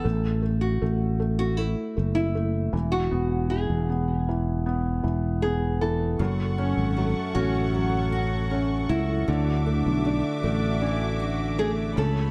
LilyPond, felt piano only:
\new Staff \with { instrumentName = "Felt piano" } { \time 4/4 \key fis \minor \tempo 4 = 78 a8 a8 a8 a8 a8 a8 a8 e8 | b8 e8 b8 e8 b8 e8 b8 e8 | fis8 cis'8 fis8 cis'8 fis4 cis'4 | d8 a8 d'8 a8 d'4 a8 cis8 | }